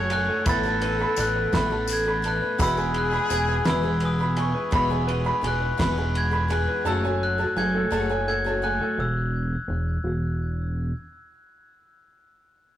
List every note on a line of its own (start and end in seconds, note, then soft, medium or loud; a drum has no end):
0.00 0.28 F#1 loud
0.00 0.43 F#1 medium
0.00 0.43 F#2 medium
0.00 0.48 G#3 medium
0.00 0.11 A3 medium
0.00 0.46 A3 medium
0.00 0.11 C#4 medium
0.00 0.48 C#4 medium
0.00 0.49 F#4 medium
0.00 0.11 G#4 medium
0.00 0.47 B4 medium
0.00 0.48 C#5 loud
0.00 0.48 C#5 medium
0.00 0.47 A5 medium
0.10 0.47 F#3 medium
0.10 0.46 A3 medium
0.10 0.47 C#4 medium
0.10 0.46 G#5 medium
0.10 0.48 F#6 loud
0.10 ride medium
0.29 0.46 A4 medium
0.46 1.05 A1 loud
0.46 2.55 A1 medium
0.46 0.64 A2 medium
0.46 2.55 A2 medium
0.46 0.64 E3 medium
0.46 1.11 A3 medium
0.46 0.65 A3 medium
0.46 1.12 B3 medium
0.46 0.65 B3 medium
0.46 1.12 E4 medium
0.46 2.24 A4 loud
0.46 0.63 A4 medium
0.46 1.12 B4 medium
0.46 1.11 E5 loud
0.46 1.00 B5 loud
0.46 1.21 A6 loud
0.46 kick loud
0.46 ride loud
0.46 tambourine medium
0.63 1.01 A3 medium
0.63 0.99 B3 medium
0.63 0.98 A4 medium
0.63 1.16 A5 medium
0.63 tambourine soft
0.82 1.34 B4 medium
0.82 ride medium
0.99 1.17 A3 soft
0.99 1.18 B3 soft
0.99 1.17 A4 medium
0.99 1.53 B5 medium
1.16 1.47 A1 loud
1.16 1.52 E3 medium
1.16 1.53 A3 medium
1.16 1.53 B3 medium
1.16 1.54 A4 medium
1.16 1.70 A5 medium
1.16 1.92 F#6 loud
1.16 ride medium
1.16 tambourine loud
1.36 2.06 B4 medium
1.52 2.41 A1 medium
1.52 1.71 A2 medium
1.52 1.71 E3 medium
1.52 2.17 A3 medium
1.52 1.71 A3 medium
1.52 2.18 B3 medium
1.52 1.71 B3 medium
1.52 2.18 E4 medium
1.52 1.69 A4 medium
1.52 2.18 B4 medium
1.52 2.18 E5 medium
1.52 2.06 B5 medium
1.52 kick medium
1.52 snare loud
1.52 ride medium
1.52 tambourine soft
1.70 2.07 A3 soft
1.70 2.05 B3 soft
1.70 2.04 A4 medium
1.70 2.24 A5 medium
1.87 ride medium
1.87 tambourine loud
1.93 2.27 G#6 loud
2.05 2.22 A3 soft
2.05 2.23 B3 soft
2.05 2.23 A4 medium
2.05 2.59 B5 medium
2.22 2.57 E3 medium
2.22 2.59 A3 medium
2.22 2.59 B3 medium
2.22 2.60 A4 medium
2.22 2.60 A5 medium
2.22 ride medium
2.22 tambourine soft
2.28 2.62 F#6 medium
2.42 2.60 B4 medium
2.58 3.18 E1 loud
2.58 4.68 E2 medium
2.58 2.77 E2 medium
2.58 2.77 B2 medium
2.58 2.77 E3 medium
2.58 4.68 E3 medium
2.58 3.24 G#3 medium
2.58 2.76 G#3 medium
2.58 3.24 B3 medium
2.58 2.76 B3 medium
2.58 3.24 E4 medium
2.58 4.68 G#4 loud
2.58 2.74 G#4 medium
2.58 3.24 B4 medium
2.58 3.24 E5 medium
2.58 3.11 B5 loud
2.58 kick loud
2.58 ride medium
2.58 tambourine loud
2.62 2.94 E6 loud
2.76 3.13 E3 medium
2.76 3.13 G#3 medium
2.76 3.12 B3 medium
2.76 3.10 G#4 medium
2.76 3.28 G#5 medium
2.76 tambourine soft
2.94 3.33 F#6 medium
2.94 ride medium
3.11 3.28 E3 soft
3.11 3.29 G#3 soft
3.11 3.30 B3 medium
3.11 3.30 G#4 medium
3.11 3.64 B5 medium
3.29 3.60 E1 loud
3.29 3.65 E3 medium
3.29 3.65 G#3 medium
3.29 3.65 B3 medium
3.29 3.66 G#4 medium
3.29 3.82 G#5 medium
3.29 ride medium
3.29 tambourine medium
3.34 3.65 G#6 medium
3.49 4.01 B4 medium
3.64 4.53 E1 loud
3.64 3.83 E2 medium
3.64 3.83 B2 medium
3.64 3.84 E3 medium
3.64 4.30 G#3 medium
3.64 3.82 G#3 medium
3.64 4.31 B3 medium
3.64 3.82 B3 medium
3.64 4.31 E4 medium
3.64 3.81 G#4 medium
3.64 4.31 B4 medium
3.64 4.31 E5 medium
3.64 4.19 B5 medium
3.64 4.04 E6 loud
3.64 snare loud
3.64 ride medium
3.82 4.20 E3 medium
3.82 4.19 G#3 soft
3.82 4.19 B3 soft
3.82 4.18 G#4 medium
3.82 4.36 G#5 medium
4.00 4.53 B4 medium
4.00 ride medium
4.05 4.36 D#6 loud
4.19 4.35 E3 soft
4.19 4.36 G#3 soft
4.19 4.37 B3 soft
4.19 4.37 G#4 medium
4.19 4.72 B5 medium
4.37 4.71 E3 medium
4.37 4.71 G#3 medium
4.37 4.72 B3 medium
4.37 4.72 G#4 medium
4.37 4.89 G#5 medium
4.37 4.75 C#6 medium
4.37 ride medium
4.55 5.06 B4 medium
4.71 5.31 E1 loud
4.71 4.89 E2 medium
4.71 6.81 E2 medium
4.71 4.90 B2 medium
4.71 4.90 E3 medium
4.71 6.81 E3 medium
4.71 5.37 G#3 medium
4.71 4.90 G#3 medium
4.71 5.37 B3 medium
4.71 4.90 B3 medium
4.71 5.37 E4 medium
4.71 4.89 G#4 medium
4.71 5.37 B4 medium
4.71 5.38 E5 loud
4.71 5.25 B5 loud
4.71 kick loud
4.71 ride medium
4.77 5.48 B5 medium
4.90 5.26 E3 soft
4.90 5.25 G#3 medium
4.90 5.25 B3 medium
4.90 5.23 G#4 medium
4.90 5.42 G#5 medium
5.08 5.60 B4 medium
5.08 ride medium
5.24 5.40 E3 soft
5.24 5.41 G#3 medium
5.24 5.42 B3 soft
5.24 5.43 G#4 medium
5.24 5.78 B5 medium
5.41 5.72 E1 loud
5.41 5.78 E3 medium
5.41 5.78 G#3 medium
5.41 5.78 B3 medium
5.41 5.79 G#4 medium
5.41 5.97 G#5 medium
5.41 ride medium
5.47 6.18 F#6 medium
5.62 6.32 B4 medium
5.78 6.67 E1 medium
5.78 5.96 E2 medium
5.78 5.96 B2 medium
5.78 5.97 E3 medium
5.78 6.44 G#3 medium
5.78 5.97 G#3 medium
5.78 6.44 B3 medium
5.78 5.96 B3 medium
5.78 6.44 E4 medium
5.78 5.95 G#4 medium
5.78 6.44 B4 medium
5.78 6.44 E5 medium
5.78 6.31 B5 medium
5.78 kick loud
5.78 snare loud
5.78 ride loud
5.96 6.33 E3 soft
5.96 6.32 G#3 soft
5.96 6.31 B3 medium
5.96 6.30 G#4 soft
5.96 6.49 G#5 medium
6.15 6.52 G#6 loud
6.15 ride medium
6.31 6.47 E3 soft
6.31 6.48 G#3 medium
6.31 6.49 B3 medium
6.31 6.49 G#4 medium
6.31 6.85 B5 medium
6.48 6.84 E3 medium
6.48 6.85 G#3 medium
6.48 6.86 B3 medium
6.48 6.86 G#4 medium
6.48 6.86 G#5 medium
6.48 ride medium
6.53 6.88 F#6 medium
6.68 6.86 B4 medium
6.85 7.44 F#1 loud
6.85 7.03 F#2 medium
6.85 7.03 C#3 medium
6.85 7.03 F#3 medium
6.85 7.03 A3 medium
6.85 7.03 C#4 medium
6.85 7.04 G#4 medium
6.85 7.38 A5 loud
6.85 7.19 E6 medium
7.04 7.40 F#3 soft
7.04 7.39 A3 medium
7.04 7.39 C#4 medium
7.04 7.55 G#5 medium
7.23 7.58 F#6 loud
7.38 7.55 F#3 soft
7.38 7.56 A3 soft
7.38 7.57 C#4 soft
7.38 7.56 G#4 medium
7.38 7.90 A5 medium
7.56 7.85 F#1 loud
7.56 7.91 F#3 medium
7.56 7.91 A3 medium
7.56 7.91 C#4 medium
7.56 8.09 G#5 medium
7.56 8.27 G#6 loud
7.74 8.26 A4 medium
7.91 8.80 F#1 medium
7.91 8.09 F#2 medium
7.91 8.09 C#3 medium
7.91 8.09 F#3 medium
7.91 8.09 A3 medium
7.91 8.08 C#4 medium
7.91 8.10 G#4 medium
7.91 8.45 A5 loud
8.09 8.46 F#3 soft
8.09 8.45 A3 medium
8.09 8.45 C#4 medium
8.09 8.62 G#5 medium
8.28 8.79 A4 medium
8.28 8.64 G#6 loud
8.44 8.61 F#3 soft
8.44 8.62 A3 soft
8.44 8.63 C#4 medium
8.44 8.62 G#4 medium
8.44 8.99 A5 medium
8.62 8.98 F#3 medium
8.62 8.98 A3 medium
8.62 8.99 C#4 medium
8.62 8.99 G#5 medium
8.62 9.00 F#6 medium
8.81 8.98 A4 medium
8.98 9.57 E1 loud
8.98 10.37 E6 loud
9.68 9.98 E1 medium
10.04 10.92 E1 medium